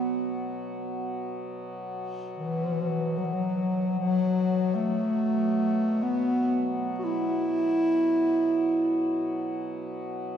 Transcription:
0.00 10.37 B2 medium
0.00 10.37 F#3 soft
0.00 1.06 B3 medium
2.37 3.19 E3 medium
3.18 3.26 F#3 medium
3.24 3.34 E3 medium
3.33 3.98 F#3 medium
3.99 4.77 F#3 medium
4.75 6.04 A3 medium
6.03 6.79 B3 medium
6.98 7.06 F#4 medium
7.04 9.52 E4 medium

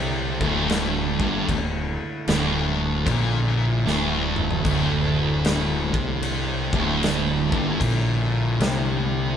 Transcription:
0.00 0.37 C2 loud
0.00 0.40 C3 loud
0.00 9.37 D3 medium
0.00 9.37 A3 medium
0.00 9.37 E4 medium
0.41 1.16 D1 medium
0.41 1.18 D2 loud
0.41 kick loud
0.70 snare loud
0.70 crash medium
1.20 1.47 G1 loud
1.20 1.49 G2 loud
1.20 kick loud
1.49 1.95 D1 medium
1.49 1.90 D2 medium
1.49 kick medium
1.49 crash medium
2.27 3.02 D1 loud
2.27 3.06 D2 loud
2.27 snare loud
2.27 crash medium
3.06 3.81 A#1 loud
3.06 3.85 A#2 loud
3.06 kick loud
3.06 crash medium
3.85 4.60 D1 medium
3.85 4.64 D2 loud
3.85 snare medium
4.36 mid tom medium
4.51 floor tom loud
4.65 5.90 D1 loud
4.65 5.92 D2 loud
4.65 kick loud
4.65 crash medium
5.45 snare loud
5.45 crash medium
5.93 6.69 C2 loud
5.93 6.71 C3 loud
5.93 kick loud
6.23 crash medium
6.73 7.48 D1 loud
6.73 7.51 D2 loud
6.73 kick loud
7.03 snare loud
7.03 crash medium
7.52 7.79 G1 loud
7.52 7.80 G2 loud
7.52 kick loud
7.81 8.56 A#1 medium
7.81 8.59 A#2 loud
7.81 kick loud
7.81 crash medium
8.60 9.37 C2 loud
8.60 9.37 C3 loud
8.60 snare loud
8.60 crash medium

